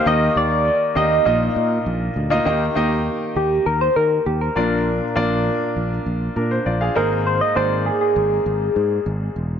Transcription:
<<
  \new Staff \with { instrumentName = "Soft synth lead" } { \time 4/4 \key ees \major \tempo 4 = 100 ees''8 d''4 ees''4. r4 | r4. g'8 bes'16 c''16 bes'8 g'16 bes'8.~ | bes'4.~ bes'16 r4. r16 bes'8 | c''16 ees''16 c''8 aes'16 aes'2~ aes'8 r16 | }
  \new Staff \with { instrumentName = "Grand piano" } { \time 4/4 \key ees \major << { r1 | r1 | r2 r8 <d' bes'>16 c''16 <f' d''>16 <aes' f''>8 r16 | r1 | } \\ { <bes ees' g' ees''>4 r8 <bes ees' g' ees''>8 <bes ees' f' ees''>4. r16 <bes ees' f' ees''>16 | <bes ees' g' ees''>16 r16 <bes ees' g' ees''>4~ <bes ees' g' ees''>16 r4. r16 <bes d' f' d''>8~ | <bes d' f' d''>16 r16 <bes d' f' d''>4~ <bes d' f' d''>16 r4. r16 <bes ees' aes' c''>8~ | <bes ees' aes' c''>16 r16 <bes ees' aes' d''>4~ <bes ees' aes' d''>16 r2 r16 | } >> }
  \new Staff \with { instrumentName = "Grand piano" } { \clef bass \time 4/4 \key ees \major ees4. r8 bes,4. r8 | ees4. r2 bes,8~ | bes,4 r2 r8 aes,8~ | aes,4 r2. | }
  \new Staff \with { instrumentName = "Fretless electric bass" } { \clef bass \time 4/4 \key ees \major ees,8 ees,8. r16 ees,8 bes,,8 bes,8 bes,,8 d,8 | ees,8 ees,8. r16 ees,8 ees,8 ees8 ees,8 bes,,8~ | bes,,8 bes,,8. r16 bes,,8 bes,,8 bes,8 bes,,8 aes,,8~ | aes,,8 aes,,8. r16 aes,,8 aes,,8 aes,8 aes,,8 fes,,8 | }
>>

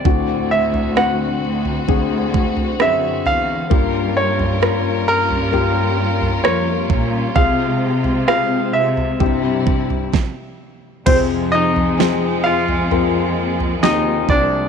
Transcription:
<<
  \new Staff \with { instrumentName = "Grand piano" } { \time 4/4 \key f \minor \tempo 4 = 66 d''8 e''8 fis''4. r8 e''8 f''8~ | f''8 des''4 bes'4. des''4 | f''4 f''8 e''4. r4 | <c' c''>8 <ees' ees''>4 <f' f''>4. <ees' ees''>8 <d' d''>8 | }
  \new Staff \with { instrumentName = "Felt piano" } { \time 4/4 \key f \minor <c' d' fis'>4 <c' d' fis'>4 <c' d' aes'>4 <c' d' aes'>4 | <bes f' g'>4 <bes f' bes'>4 <bes f' g'>4 <bes f' bes'>4 | <c' f' aes'>4 <c' f' aes'>4 <c' e' g'>4 r4 | <c' f' g' aes'>4 <c' f' aes'>4 <c' f' bes'>4 <c' f' g'>4 | }
  \new Staff \with { instrumentName = "Felt piano" } { \clef bass \time 4/4 \key f \minor a,4. r2 r8 | <g, g>4. r2 r8 | c4. r8 g,4 r4 | c4. r2 r8 | }
  \new Staff \with { instrumentName = "String section" } { \time 4/4 \key f \minor << { <d fis'>1 | <g des' bes'>1 | aes2 <c e'>4 r4 | <f aes>1 | } \\ { c'1 | f'1 | c'2 g4 r4 | c'2 bes2 | } >> }
  \new Staff \with { instrumentName = "Cello section" } { \clef bass \time 4/4 \key f \minor d,4. d,8 d,4 fis,8 e,8 | g,4. g,4. f,8 bes,8 | c4. c8 c4 r4 | f,4. f,4. ees,8 c,8 | }
  \new DrumStaff \with { instrumentName = "Drums" } \drummode { \time 4/4 <bd tomfh>8. tomfh16 ss8. tomfh16 <bd tomfh>8 bd16 tomfh16 ss8 tomfh8 | <bd tomfh>8. tomfh16 ss8. tomfh16 tomfh8. tomfh16 ss8 <bd tomfh>8 | <bd tomfh>8. tomfh16 ss8. tomfh16 <bd tomfh>8 bd16 tomfh16 <bd sn>4 | <cymc bd tomfh>8. tomfh16 sn8. tomfh16 tomfh8. tomfh16 sn8 <bd tomfh>8 | }
>>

